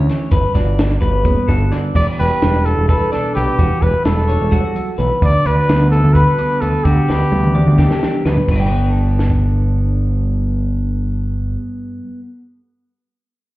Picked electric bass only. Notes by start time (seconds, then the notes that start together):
0.32 G1
0.55 G1
1.02 G1
1.25 F#1
1.49 G1
1.95 E1
2.19 E1
2.42 E1
2.77 E1
3.37 B1
3.59 E1
3.82 E1
4.06 E1
4.40 E1
4.99 B1
5.22 D2
5.46 D2
5.69 D2
6.04 D2
6.62 D2
6.85 D2
7.09 D2
7.32 D2
7.67 D2
8.25 D2
8.48 G1